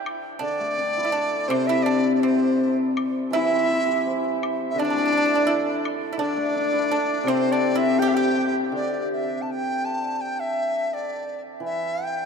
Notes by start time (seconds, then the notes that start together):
0.06 high woodblock
0.39 D3 D4 D5
0.60 A3
0.78 D4
0.97 E4
1.05 E4
1.12 D4 A4
1.48 C3 C4 C5, high woodblock
1.67 E4 E5
1.83 D4 D5
2.15 D5
2.20 C4 C5, high woodblock
2.97 high woodblock
3.31 E3 E4 E5
3.51 C4
3.69 E4
3.87 G4
4.05 C5
4.43 high woodblock
4.70 D3 E5
4.78 D4 D5
4.85 D4
4.90 A3 D4
4.98 D4
5.06 D4
5.13 D4
5.17 D4
5.26 D4
5.30 E4
5.36 D4
5.47 E4 A4
5.85 high woodblock
6.13 E4
6.17 D3 D4
6.22 D5
6.37 A3
6.55 D4
6.72 E4
6.91 D4 A4
7.24 C3 C4, high woodblock
7.28 C4 C5
7.52 D4 D5
7.75 E4 E5
7.99 G4 G5, high woodblock, low woodblock
8.08 E5
8.14 G4 G5
8.72 D3 D5
9.13 E5
9.42 A5
9.51 G5
9.85 A5
10.21 G5
10.40 E5
10.94 D5
11.60 E3
11.66 E5
12.04 G5